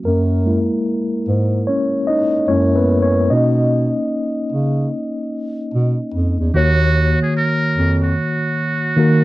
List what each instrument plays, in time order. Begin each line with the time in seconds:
0.05 bass clarinet F#2, tine electric piano A#3 A#4
0.46 tine electric piano G#3 A#3 E4
1.28 bass clarinet G#2
1.67 tine electric piano C#4 C#5
2.07 tine electric piano D#4 D#5
2.48 bass clarinet F#2, tine electric piano G#3 A#3 C#4 E4 C#5
2.76 tine electric piano B3 B4
3.02 tine electric piano C#4 C#5
3.30 bass clarinet B2, tine electric piano A#3 C#4 D#4 D#5
4.52 bass clarinet C#3
5.74 bass clarinet B2
6.14 bass clarinet F2
6.40 bass clarinet E2
6.54 bass clarinet D#2, tine electric piano D#3 A#3 F#4 C#5, muted trumpet F#4
7.22 muted trumpet G#4
7.37 muted trumpet A#4
7.77 bass clarinet F2
8.03 muted trumpet F#4
8.96 tine electric piano D#3 A#3 F#4 A#4